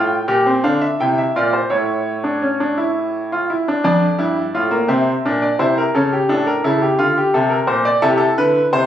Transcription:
Already playing: A2 F4 G5
0.28 A#2 G4
0.46 C4
0.64 D3 D4 F5
0.81 E5
1.00 C3 E4 G5
1.18 E5
1.36 A#2 F4 D5
1.53 C5
1.70 A2 E4 C#5
2.24 D4
2.42 C#4
2.60 D4
2.78 E4
3.32 F4
3.50 E4
3.68 D4
3.84 F2 D4 D5
4.19 G2 E4
4.54 A2 F4
4.71 A#3
4.88 C3 C4 E5
5.25 A#2 D4
5.42 D5
5.59 C3 E4 C5
5.78 A#4
5.95 C#3 C#4 A4
6.13 G4
6.29 A2 D4 A4
6.47 A#4
6.64 C#3 E4 A4
6.82 G4
6.99 D3 F4
7.18 G4
7.34 C3 A4
7.50 A#4
7.67 A#2 C5
7.85 D5
8.02 C3 E4 A4
8.10 G4
8.18 A4
8.38 D3 B4
8.73 C3 C5

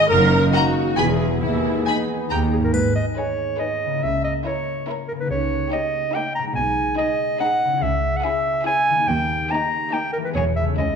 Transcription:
Already playing: G#2 G#3 D#4 G#4 D#5 D#6
0.00 D#3
0.10 F#1 F#2 A#3 D#4 A#4
0.21 F#3
0.32 A#3
0.43 D#4
0.53 F#4 D#5 F#5 A#5
0.63 A#4
0.74 D#5
0.85 D#6
0.96 E1 E2 E3 B3 E4 G#4 G#5 B5
1.07 B3
1.19 E4
1.30 B4
1.41 D#2 D#3 E4 G#4
1.52 D#4
1.63 G#3
1.74 G#4
1.86 D#4 B4 G#5 B5
1.97 G#4
2.08 G#5
2.20 B5
2.30 D#2 D#3 A#3 G4 G5 A#5
2.42 D#4
2.53 G#2 A#3 G#4
2.61 B3 G4 A#4
2.66 D#4
2.70 G#1 G#4 B4, triangle
2.75 G#2
2.96 D#5
3.17 D#4 G#4 B4 C#5
3.59 D#4 G#4 B4 D#5
3.85 C#3
3.90 A#3
3.94 E4
3.99 A#4 E5
4.03 C#2 C#3
4.24 D#5
4.45 A#3 E4 A#4 C#5
4.87 A#3 E4 A#4
5.08 C#3 A#4
5.16 A#3 B4
5.21 D#4
5.25 G4
5.30 C#2 C#3 C#5
5.71 A#3 D#4 G4 D#5
6.14 A#3 D#4 G4 G5
6.35 B2 A#5
6.43 G#3
6.47 D#4
6.52 B1 B2 G#4 G#5
6.97 G#3 D#4 G#4 D#5
7.40 G#3 D#4 G#4 F#5
7.64 C#3
7.69 C#4
7.73 E4
7.78 C#2 G#4
7.82 C#3 E5
8.17 F#5
8.23 C#4 E4 G#4 E5
8.65 C#4 E4 G#4 G#5
8.90 D#3
8.94 A#3
8.99 D#4
9.03 G4
9.08 D#2 G5
9.50 A#3 D#4 G4 A#5
9.93 A#3 D#4 G4 G5
10.13 A#4
10.17 E3
10.22 G#3 B4
10.26 B3
10.30 G#4
10.35 E1 E2 G#3 B3 G#4 C#5
10.56 C#3 E5
10.64 A3
10.68 C#4
10.73 C#2 E4
10.77 C#2 A3 C#4 E4 D#5

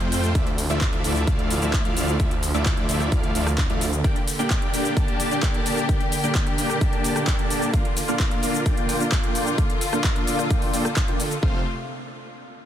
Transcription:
Already playing: C3 A3 F4
0.00 F2 A3 C4 F4 C5 G5, closed hi-hat
0.12 open hi-hat, shaker
0.24 closed hi-hat, shaker
0.35 D2 D3 F3 A3 E4 F4 D5 E5, kick, closed hi-hat, shaker
0.47 closed hi-hat
0.58 open hi-hat, shaker
0.70 D2 A3 E4 F4 D5 E5, closed hi-hat, shaker
0.81 kick, clap, closed hi-hat, shaker
0.93 closed hi-hat
1.04 D2 A3 E4 F4 D5 E5, open hi-hat, shaker
1.16 closed hi-hat, shaker
1.27 D2 A3 E4 F4 D5 F5, kick, closed hi-hat, shaker
1.39 closed hi-hat
1.50 open hi-hat, shaker
1.62 D2 A3 E4 F4 D5 E5, closed hi-hat, shaker
1.73 kick, clap, closed hi-hat, shaker
1.85 D2 A3 E4 F4 D5 F5, closed hi-hat
1.97 open hi-hat, shaker
2.08 closed hi-hat, shaker
2.20 D2 A3 E4 F4 D5 E5, kick, closed hi-hat, shaker
2.31 closed hi-hat
2.43 open hi-hat, shaker
2.54 D2 A3 E4 F4 D5 E5, closed hi-hat, shaker
2.66 kick, clap, closed hi-hat, shaker
2.77 closed hi-hat
2.89 D2 A3 E4 F4 D5 E5, open hi-hat, shaker
3.00 cross-stick, closed hi-hat, shaker
3.12 D2 A3 E4 F4 D5 F5, kick, closed hi-hat, shaker
3.24 closed hi-hat
3.35 D2 A3 E4 F4 D5 F5, open hi-hat, shaker
3.47 cross-stick, closed hi-hat, shaker
3.58 kick, clap, closed hi-hat, shaker
3.70 D2 A3 E4 F4 D5 F5, closed hi-hat
3.81 open hi-hat, shaker
3.93 closed hi-hat, shaker
4.04 A#3 D4 G4 D5 G5, kick, closed hi-hat, shaker
4.16 closed hi-hat
4.28 open hi-hat, shaker
4.39 A#3 D4 G4 D5 G5, closed hi-hat, shaker
4.50 kick, clap, closed hi-hat, shaker
4.62 closed hi-hat
4.74 A#3 D4 G4 D5 G5, open hi-hat, shaker
4.85 closed hi-hat, shaker
4.97 A#3 D4 G4 D5 A5, kick, closed hi-hat, shaker
5.08 closed hi-hat
5.20 open hi-hat, shaker
5.31 A#3 D4 G4 D5 G5, closed hi-hat, shaker
5.43 kick, clap, closed hi-hat, shaker
5.54 A#3 D4 G4 D5 A5, closed hi-hat
5.66 open hi-hat, shaker
5.77 closed hi-hat, shaker
5.89 A#3 D4 G4 D5 G5, kick, closed hi-hat, shaker
6.01 closed hi-hat
6.12 open hi-hat, shaker
6.24 A#3 D4 G4 D5 G5, closed hi-hat, shaker
6.35 kick, clap, closed hi-hat, shaker
6.47 closed hi-hat
6.58 A#3 D4 G4 D5 G5, open hi-hat, shaker
6.70 cross-stick, closed hi-hat, shaker
6.81 A#3 D4 G4 D5 A5, kick, closed hi-hat, shaker
6.93 closed hi-hat
7.04 open hi-hat, shaker
7.16 A#3 D4 G4 D5 G5, cross-stick, closed hi-hat, shaker
7.27 kick, clap, closed hi-hat, shaker
7.39 A#3 D4 G4 D5 A5, closed hi-hat
7.50 open hi-hat, shaker
7.62 closed hi-hat, shaker
7.74 A#3 D4 F4 D5 F5, kick, closed hi-hat, shaker
7.85 closed hi-hat
7.97 open hi-hat, shaker
8.08 A#3 D4 F4 D5 F5, closed hi-hat, shaker
8.20 kick, clap, closed hi-hat, shaker
8.31 closed hi-hat
8.43 A#3 D4 F4 D5 F5, open hi-hat, shaker
8.54 closed hi-hat, shaker
8.66 A#3 D4 F4 D5 G5, kick, closed hi-hat, shaker
8.77 closed hi-hat
8.89 open hi-hat, shaker
9.00 A#3 D4 F4 D5 F5, closed hi-hat, shaker
9.12 kick, clap, closed hi-hat, shaker
9.24 A#3 D4 F4 D5 G5, closed hi-hat
9.35 open hi-hat, shaker
9.47 closed hi-hat, shaker
9.58 A#3 D4 F4 A4 D5 F5, kick, closed hi-hat, shaker
9.70 closed hi-hat
9.81 open hi-hat, shaker
9.93 A#3 D4 F4 D5 F5, cross-stick, closed hi-hat, shaker
10.04 kick, clap, closed hi-hat, shaker
10.16 closed hi-hat
10.27 A#3 D4 F4 D5 F5, open hi-hat, shaker
10.39 cross-stick, closed hi-hat, shaker
10.50 A#3 D4 F4 D5 G5, kick, closed hi-hat, shaker
10.62 open hi-hat
10.74 A#3 D4 F4 D5 G5, open hi-hat, shaker
10.85 cross-stick, closed hi-hat, shaker
10.96 kick, clap, closed hi-hat, shaker
11.08 A#3 D4 F4 D5 G5, closed hi-hat
11.20 open hi-hat, shaker
11.31 closed hi-hat, shaker
11.43 F1 C3 A3 C4 F4 C5 F5, kick

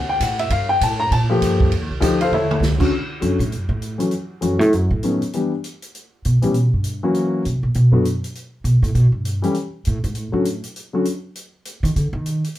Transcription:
Already playing: D2
0.09 G5
0.20 A2 F#5, kick, hi-hat pedal, ride
0.39 E5, ride
0.50 G2 F5, kick, ride
0.69 G5
0.81 A2 A5, kick, hi-hat pedal, ride
1.00 A#5
1.11 A#2 A5, kick, ride
1.30 F3 A3 A#3 G4
1.42 G2, kick, hi-hat pedal, ride
1.60 kick
1.71 F2, kick, ride
1.81 D#2
1.90 C2
2.00 D2 F3 A3 D#4 G4, kick, hi-hat pedal, ride
2.21 F4 A4 C5 F5, ride
2.31 E2 E4 A4 C#5 E5, mid tom
2.51 mid tom
2.60 C#2, snare, hi-hat pedal
2.78 D3 A3 C#4 F#4, kick, crash
3.21 F#2 D3 F#3 A3 C#4 F#4, closed hi-hat
3.39 A2, closed hi-hat
3.52 F#2, closed hi-hat
3.69 A2
3.82 closed hi-hat
3.98 E3 F#3 A3 C#4 F#4, closed hi-hat
4.11 closed hi-hat
4.41 F#2 E3 F#3 A3 C#4 F#4, closed hi-hat
4.59 A2, closed hi-hat
4.73 F#2, closed hi-hat
4.91 A2
5.03 D#3 F#3 A3 B3 C#4, closed hi-hat
5.22 closed hi-hat
5.33 E3 G3 B3 D4 G4, closed hi-hat
5.64 closed hi-hat
5.82 closed hi-hat
5.95 closed hi-hat
6.25 B2, closed hi-hat
6.42 A2 E3 G3 B3 C#4 G4, closed hi-hat
6.54 B2, closed hi-hat
6.73 G2
6.84 closed hi-hat
7.03 E3 F#3 A#3 C#4 F#4
7.14 closed hi-hat
7.45 C3, closed hi-hat
7.63 A#2
7.74 B2, closed hi-hat
7.92 F#2 D3 F#3 A3 B3 F#4
8.05 closed hi-hat
8.24 closed hi-hat
8.35 closed hi-hat
8.64 B2, closed hi-hat
8.82 A2, closed hi-hat
8.95 B2, closed hi-hat
9.25 closed hi-hat
9.42 E3 G3 A3 C#4 G4, closed hi-hat
9.54 closed hi-hat
9.85 A2, closed hi-hat
10.04 G#2, closed hi-hat
10.15 A2, closed hi-hat
10.32 A2 D3 F#3 A3 C#4 F#4
10.45 closed hi-hat
10.63 closed hi-hat
10.76 closed hi-hat
10.93 D3 F#3 A3 C#4 F#4
11.05 closed hi-hat
11.35 closed hi-hat
11.65 closed hi-hat
11.83 D#3, closed hi-hat
11.96 D3, closed hi-hat
12.13 D#3
12.26 closed hi-hat
12.44 closed hi-hat
12.55 closed hi-hat

